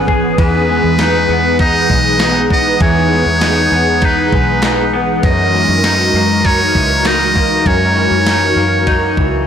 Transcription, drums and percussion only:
0.08 kick
0.38 kick, ride
0.99 snare, ride, tambourine
1.59 kick, ride
1.90 kick
2.19 snare, ride, tambourine
2.50 kick
2.80 kick, ride
3.41 snare, ride, tambourine
4.02 kick, ride
4.33 kick
4.62 snare, ride, tambourine
5.23 kick, ride
5.84 snare, ride, tambourine
6.45 kick, ride
6.75 kick
7.05 snare, ride, tambourine
7.36 kick
7.66 kick, ride
8.26 snare, ride, tambourine
8.87 kick, ride
9.17 kick

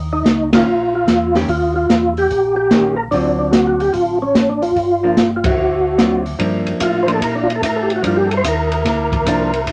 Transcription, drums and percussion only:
0.26 snare, closed hi-hat
0.53 snare, ride
1.08 snare, closed hi-hat
1.35 snare, open hi-hat
1.48 kick, open hi-hat
1.90 snare, closed hi-hat
2.17 open hi-hat
2.30 kick, open hi-hat
2.71 snare, closed hi-hat
3.12 kick, open hi-hat
3.53 snare, closed hi-hat
3.80 open hi-hat
3.94 kick, open hi-hat
4.35 snare, closed hi-hat
4.62 open hi-hat
4.76 kick, open hi-hat
5.17 snare, closed hi-hat
5.44 kick, ride
5.98 snare, closed hi-hat
6.26 open hi-hat
6.39 kick, ride
6.67 ride
6.80 kick, hi-hat pedal, ride
7.08 ride
7.21 kick, ride
7.50 ride
7.62 kick, hi-hat pedal, ride
7.90 ride
8.03 kick, ride
8.31 ride
8.44 kick, hi-hat pedal, ride
8.72 ride
8.85 kick, snare, ride
9.12 kick, ride
9.26 kick, hi-hat pedal, ride
9.53 ride
9.66 kick, ride

